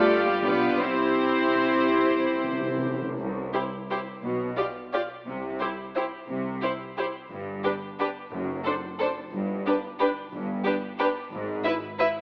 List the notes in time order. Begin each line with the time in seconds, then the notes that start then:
Already playing: G1 A3 F4 G4 A4 D5
0.26 G3 G4
0.44 B1 B3 D4 F4 G4 B4 D5
0.82 C2 C3 C4 E4 G4 C5
0.90 C3
0.98 C3
1.23 C3
1.40 C3
1.48 C3
1.56 C3
1.64 C3
1.80 C3
1.88 C3
1.95 C3
2.04 C3
2.10 C3
2.19 C3
2.27 C3
2.35 C3
2.44 C3
2.52 C3
2.61 C3
2.69 C3
2.78 C3
2.85 C3
2.94 C3
3.02 C3
3.09 C3
3.19 C2
3.54 E4 G4 C5
3.90 E4 G4 C5
4.23 B1 B2
4.57 F4 G4 D5
4.93 F4 G4 D5
5.27 C2 C3
5.60 E4 G4 C5
5.96 E4 G4 C5
6.29 C2 C3
6.62 E4 G4 C5
6.98 E4 G4 C5
7.31 G1 G2
7.64 D4 G4 B4
8.00 D4 G4 B4
8.32 F#1 F#2
8.64 D4 A4 C5
8.99 D4 A4 C5
9.32 G1 G2
9.66 D4 G4 B4
9.99 D4 G4 B4
10.33 G1 G2
10.65 D4 G4 B4
10.99 D4 G4 B4
11.32 G#1 G#2
11.64 E4 B4 E5
11.99 E4 B4 E5